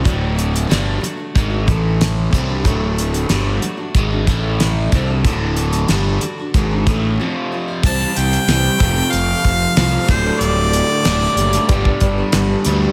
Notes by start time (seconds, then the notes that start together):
0.03 D1 D2 A2 D3 F#3 A3 D4 F#4, kick, closed hi-hat
0.36 F#3 A3 D4 F#4, closed hi-hat
0.53 A3 D4 F#4, closed hi-hat
0.68 G1 G2 D3 G3 A3 D4 F#4, snare, closed hi-hat
1.00 F#3 A3 D4 F#4, muted fingered electric bass stroke, muted overdriven electric guitar stroke
1.04 closed hi-hat
1.17 A3 D4 F#4
1.35 G#1 G#2 D#3 G#3, kick, closed hi-hat
1.50 A3 D4 F#4
1.67 A1 A2 E3 A3 E4 A4, kick, closed hi-hat
2.01 snare, closed hi-hat
2.31 C2 C3 F#3 G3 A3 C4 D4 F#4, kick, closed hi-hat
2.48 A3 D4 F#4
2.64 D1 D2 A2 D3 F#3 A3 D4 F#4, kick, closed hi-hat
2.96 F#3 A3 D4 F#4, closed hi-hat
3.13 A3 D4 F#4, closed hi-hat
3.29 G1 G2 D3 G3 A3 D4 F#4, snare, closed hi-hat
3.61 F#3 A3 D4 F#4, muted overdriven electric guitar stroke, muted fingered electric bass stroke, closed hi-hat
3.77 A3 D4 F#4
3.95 G#1 G#2 D#3 G#3, kick, closed hi-hat
4.10 A3 D4 F#4
4.27 A1 A2 E3 A3 E4 A4, kick, closed hi-hat
4.60 snare, closed hi-hat
4.92 C2 C3 D3 G3 C4 D4 F#4 A4, kick, closed hi-hat
5.07 D4 F#4 A4
5.24 D1 D2 A2 D3 D4 F#4 A4, kick, closed hi-hat
5.56 D3 D4 F#4 A4, closed hi-hat
5.71 D4 F#4 A4, closed hi-hat
5.88 G1 G2 D3 G3 D4 F#4 A4, snare, closed hi-hat
6.20 D3 D4 F#4 A4, muted overdriven electric guitar stroke, muted fingered electric bass stroke, closed hi-hat
6.38 D4 F#4 A4
6.54 G#1 G#2 D#3 G#3, kick, closed hi-hat
6.70 D4 F#4 A4
6.87 A1 A2 E3 A3, kick, closed hi-hat
7.20 F2 C3 F3 C4 F4 C5
7.52 F3 C4 F4 C5
7.68 C4 F4 C5
7.83 C2 C3 E3 G3 C4 E4 G4 C5 A5, kick, closed hi-hat
8.16 C2 E4 G4 C5 G5, closed hi-hat
8.31 G3 C4 E4 C5, closed hi-hat
8.47 C2 C3 E3 G3 C4 E4 G4 B4 C5, snare, closed hi-hat
8.79 F1 F2 C3 F3 A3 C4 F4 A4 C5, kick, closed hi-hat
8.95 C4 F4 A4
9.11 F1 F5, closed hi-hat
9.43 F1 A3 C4 F4 A4 C5, kick, closed hi-hat
9.74 C2 F2 C3 F3 A3 C4 F4 A4 C5, snare, closed hi-hat
9.78 F3 F4 A4
10.07 D1 D2 A2 D3 G3 D4 G4 A4 C5 D5, kick, closed hi-hat
10.25 G3 D4 A4
10.39 D1 D3 G3 D4 A4 D5, closed hi-hat
10.71 G4 A4 D5, closed hi-hat
10.89 G3 D4 A4
11.04 D1 D2 A2 D3 G3 D4 G4 A4 D5, snare, closed hi-hat
11.35 F#1 D3 G3 D4 G4 A4 D5, closed hi-hat
11.39 A4
11.53 G3 D4 A4, snare, closed hi-hat
11.68 G1 G2 D3 G3 B3 D4 G4 B4 D5, kick, closed hi-hat
11.72 G3
11.85 kick
12.00 G1 G3 B3 D4 G4 B4 D5, kick, closed hi-hat
12.18 G3 B3 D4 G4
12.32 G1 G2 D3 G3 B3 D4 G4 B4 D5, snare, closed hi-hat
12.37 G4
12.65 D2 D3 G3 B3 D4 G4 B4 D5, closed hi-hat
12.69 G2 G4
12.82 G3 B3 D4 G4